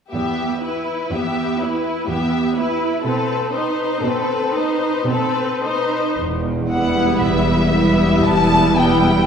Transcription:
0.12 E2 B3 G4 E5
0.63 E4 B4
1.11 E2 B3 G4 E5
1.61 E4 B4
2.08 E2 B3 G4 E5
2.56 E4 B4
3.04 B2 C4 A4 B4
3.53 D#4 B4 C5
4.03 B2 C4 A4 B4
4.55 D#4 B4 C5
5.08 B2 C4 A4 B4
5.63 D#4 B4 C5
6.17 E1 E2
6.70 G3 B3 E4 B4 F#5
7.23 E1 E2 E5
7.74 G3 B3 E4 B4
8.25 E1 E2 A5
8.78 G3 B3 E4 B4 G5

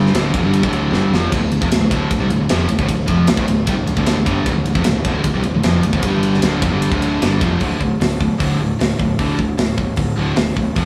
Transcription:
Already playing: G1 G2 D3 G3
0.06 snare
0.14 D1 D2 A2 D3, snare, ride
0.33 F1 F2 C3, kick, ride
0.43 G1 G2 D3 G3
0.54 ride
0.63 D1 D2 A2 D3, kick
0.73 ride
0.92 G1 G2 D3 G3, snare
1.12 F1 F2 C3 F3, snare
1.32 D1 D2 A2, kick, ride, crash
1.42 D1 D2 A2
1.52 D1 D2 A2, ride
1.61 F1 F2 C3, kick
1.70 D1 D2 A2, snare, ride
1.81 D1 D2 A2
1.91 D1 D2 A2 D3, kick, ride
2.11 D1 D2 A2, kick, ride
2.20 C2 C3 G3
2.30 D1 D2 A2, ride
2.40 D1 D2 A2
2.49 F1 F2 C3 F3, snare, ride
2.69 D1 D2 A2, ride
2.79 D1 D2 A2, kick
2.89 D1 D2 A2, kick, ride
3.08 F1 F2 C3 F3, kick, ride
3.27 D1 D2 A2, snare, ride
3.37 D1 D2 A2, kick
3.48 D1 D2 A2, ride
3.67 C2 C3 G3, kick, ride
3.77 D1 D2 A2
3.87 D1 D2 A2, ride
3.97 D1 D2 A2 D3, kick
4.06 snare, ride
4.17 D1 D2 A2
4.26 G1 G2 D3 G3, kick, ride
4.46 D1 D2 A2, kick, ride
4.55 D1 D2 A2
4.65 D1 D2 A2, ride
4.75 F1 F2 C3, kick
4.84 D1 D2 A2, snare, ride
4.95 D1 D2 A2
5.05 D1 D2 A2 D3, kick, ride
5.24 D1 D2 A2, kick, ride
5.34 C2 C3 G3
5.43 D1 D2 A2, ride
5.54 D1 D2 A2
5.63 F1 F2 C3 F3, snare, ride
5.83 D1 D2 A2, ride
5.93 D1 D2 A2, kick
6.02 G1 G2 D3 G3, kick, ride
6.06 G3
6.23 ride
6.34 snare
6.42 D1 D2 A2 D3, snare, ride
6.62 F1 F2 C3, kick, ride
6.73 G1 G2 D3 G3
6.82 ride
6.92 D1 D2 A2 D3, kick
7.02 ride
7.21 G1 G2 D3 G3, snare, ride
7.41 F1 F2 C3 F3, kick, ride
7.60 D1 D2 A2 D3, kick, open hi-hat
7.81 D1 D2 A2, kick
8.01 D1 D2 A2, snare, open hi-hat
8.20 D2 A2, kick
8.40 D1 D2 A2 D3, kick, open hi-hat
8.60 D1 D2 A2
8.80 D1 D2 A2, snare, open hi-hat
9.00 D1 D2 A2, kick
9.19 D1 D2 A2 D3, kick, open hi-hat
9.38 D1 D2 A2, kick
9.58 D1 D2 A2, snare, open hi-hat
9.78 D1 D2 A2, kick
9.96 D1 D2 A2, kick, open hi-hat
10.18 D1 D2 A2 D3
10.36 D1 D2 A2, snare, open hi-hat
10.57 D1 D2 A2, kick
10.76 F1 F2 C3 F3, kick, open hi-hat

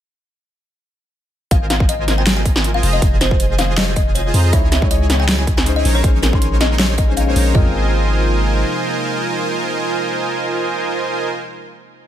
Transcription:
1.51 G#1 C3 F3 G#3 A#3 F4 A#4 C5 D#5 F5 G#5, kick, closed hi-hat
1.70 F5, snare, closed hi-hat
1.80 kick
1.89 D#5, closed hi-hat
2.08 snare, closed hi-hat
2.18 G5
2.27 snare, closed hi-hat
2.37 G#5
2.46 kick, closed hi-hat
2.56 G#5, snare
2.64 closed hi-hat
2.74 F5
2.83 F1 D#3 F4 G#4 C5 D#5 A#5, open hi-hat
2.93 D#5
3.02 F4 G#4 C5 D#5 G#5, kick, closed hi-hat
3.21 C5, snare, closed hi-hat
3.31 kick
3.40 closed hi-hat
3.58 F5, snare, closed hi-hat
3.77 D#5, snare, closed hi-hat
3.96 D#5, kick, closed hi-hat
4.15 C#5, closed hi-hat
4.34 F2 F4 G#4 C5 D#5 A#5, open hi-hat
4.52 C#2 C#3 E3 G#3 D#4 E4 G#4 C#5 D#5 E5 G#5, kick, closed hi-hat
4.72 E5, snare, closed hi-hat
4.80 G#3 E4 C#5 D#5, kick
4.91 D#5, closed hi-hat
5.10 snare, closed hi-hat
5.20 G5
5.29 snare, closed hi-hat
5.39 G#5
5.47 kick, closed hi-hat
5.57 G#5, snare
5.65 G#3 C#4 D#4 C5, closed hi-hat
5.76 D#5
5.85 A#1 D#3 A#3 C#4 D#4 A#4 C5 C#5 A#5, open hi-hat
5.95 C#5
6.03 A#1 G#3 C#4 D#4 A#4 C5 C#5 G#5, kick, closed hi-hat
6.23 A#4, snare, closed hi-hat
6.31 G#3 C#4 D#4, kick
6.35 C6
6.42 closed hi-hat
6.61 D#5, snare, closed hi-hat
6.79 C#5, snare, closed hi-hat
6.98 D#5, kick, closed hi-hat
7.07 G#3 C#4 D#4 C5
7.17 F5, closed hi-hat
7.26 G#3 C#4 D#4 C5
7.36 A#1 D#4 A#4 C5 C#5 A#5, open hi-hat
7.52 C3 F3 G#3 A#3 C4 D#4 F4 A#4 C5 D#5 G#5, kick, floor tom
7.58 A#4

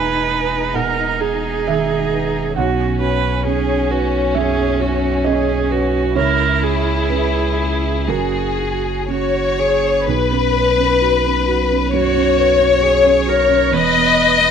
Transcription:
Already playing: E1 E2 D#4 G#4 B4 E5 G#5
0.30 B4
0.74 B2 A#4 F#5
1.20 G#4
1.67 D#3 E5
2.13 B4
2.56 B1 C#4 F#4 F#5
3.01 F#4 B4
3.45 C#4 G#4
3.90 F#4 B4
4.35 F#2 G#4 E5
4.80 F#4
5.24 C#4 G#4 D#5
5.70 F#4 B4
6.15 C#2 E4 A#4 C#5
6.62 E4 G#4
7.09 C#4 B4
7.59 G#4
8.08 F#1 F#2 F#4 G#4 A#4
8.59 F#4
9.08 C#4 F#4 C#5
9.58 G#4
10.08 B1 B4
10.31 C#4
10.54 B4
10.78 C#4
11.02 F#4
11.25 C#4
11.48 F#4
11.71 C#4
11.92 F#2 F#4 C#5
12.15 C#4
12.38 B4
12.60 C#4
12.82 F#4 G#4
13.04 C#4
13.26 F#4 A#4
13.49 C#4
13.71 E1 E2 B4 D#5
13.94 B3
14.17 B4
14.39 B3

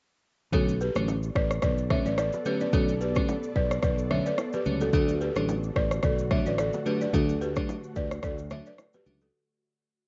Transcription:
0.52 B1 D3 F#3 A3 B3 C#4 F#4 A4 D5, kick, low conga, shaker
0.68 shaker
0.81 G4 B4, shaker
0.95 A1 D3 F#3 A3 C#4, cross-stick, shaker
1.08 high bongo, shaker
1.23 shaker
1.35 A1 B4 D5, kick, cross-stick, low bongo
1.51 cross-stick, shaker
1.62 B1 B4 D5, kick, cross-stick, low conga, shaker
1.78 shaker
1.90 D3 F#3 A3 C#4 C#5 E5, kick, cross-stick, low bongo, low conga
2.06 A1 B4 D5, shaker
2.18 B4 D5, cross-stick, high bongo, shaker
2.33 low bongo, shaker
2.45 D3 F#3 A3 C#4 G4 B4, shaker
2.61 B4 D5, high bongo, shaker
2.73 B1 D3 F#3 A3 C#4 F#4 A4, kick, low conga, shaker
2.89 shaker
3.01 G4 B4, shaker
3.15 D3 F#3 A3 C#4, kick, cross-stick, shaker
3.29 high bongo, shaker
3.43 shaker
3.56 B1 B4 D5, kick, low bongo
3.71 cross-stick, shaker
3.83 B1 B4 D5, kick, cross-stick, low conga, shaker
3.98 shaker
4.10 D3 F#3 A3 C#4 C#5 E5, cross-stick, low bongo, low conga
4.26 B4 D5, shaker
4.38 cross-stick, high bongo, shaker
4.53 G4 B4, low bongo, shaker
4.65 C#2 D3 F#3 A3 C#4, shaker
4.81 F#4 A4, high bongo, shaker
4.93 D2 D3 F#3 A3 D4 F#4 A4, kick, low conga, shaker
5.08 shaker
5.21 G4 B4, shaker
5.35 A1 D3 F#3 A3 D4, cross-stick, shaker
5.49 high bongo, shaker
5.63 shaker
5.76 A1 B4 D5, kick, cross-stick, low bongo
5.91 cross-stick, shaker
6.03 B1 A4 D5, kick, cross-stick, low conga, shaker
6.18 shaker
6.31 D3 F#3 A3 D4 C#5 E5, kick, cross-stick, low bongo, low conga
6.46 A1 B4 D5, shaker
6.58 A4 D5, cross-stick, high bongo, shaker
6.73 low bongo, shaker
6.86 D3 F#3 A3 D4 G4 B4, shaker
7.01 B4 D5, high bongo, shaker
7.13 D2 D3 F#3 A3 D4 F#4 A4, kick, low conga, shaker
7.29 shaker
7.41 G4 B4, shaker
7.56 D3 F#3 A3 D4, kick, cross-stick, shaker
7.69 high bongo, shaker
7.84 shaker
7.96 D2 B4 D5, kick, shaker
8.11 cross-stick, shaker
8.23 D2 A4 D5, kick, cross-stick, low conga, shaker
8.38 shaker
8.50 D3 F#3 A3 D4 C#5 E5, cross-stick, low bongo, low conga, shaker
8.66 B4 D5, shaker
8.78 cross-stick, high bongo, shaker
8.93 G4 B4, low bongo, shaker
9.06 C#2 D3 F#3 A3 D4, shaker
9.21 F#4 A4, high bongo, shaker

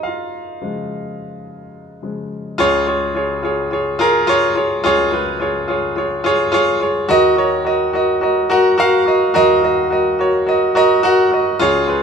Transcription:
Already playing: C#3 F3 G#3 D#4 D#5
0.03 F4 F5
0.61 C#3 F3 G#3
2.02 C#3 F3 G#3
2.58 C#2 C#3 F4 G#4 C#5
2.87 F4 G#4 C#5
3.15 F4 G#4 C#5
3.43 F4 G#4 C#5
3.71 F4 G#4 C#5
3.99 F4 G#4 A#4
4.27 F4 G#4 C#5
4.55 F4 G#4 C#5
4.84 C#2 C#3 F4 G#4 C#5
5.12 F4 G#4 B4
5.40 F4 G#4 C#5
5.68 F4 G#4 C#5
5.96 F4 G#4 C#5
6.24 F4 G#4 C#5
6.52 F4 G#4 C#5
6.80 F4 G#4 C#5
7.09 D#2 D#3 F#4 A#4 D#5
7.36 F#4 A#4 C#5
7.65 F#4 A#4 D#5
7.93 F#4 A#4 D#5
8.21 F#4 A#4 D#5
8.50 F#4 A#4 F#5
8.78 F#4 A#4 F5
9.06 F#4 A#4 D#5
9.34 D#2 D#3 F#4 A#4 D#5
9.62 F#4 A#4 D#5
9.90 F#4 A#4 D#5
10.19 F#4 A#4 C#5
10.47 F#4 A#4 D#5
10.75 F#4 A#4 D#5
11.03 F#4 A#4 F#5
11.32 F#4 A#4 D#5
11.59 C#2 C#3 F4 G#4 C#5
11.88 F4 G#4 B4

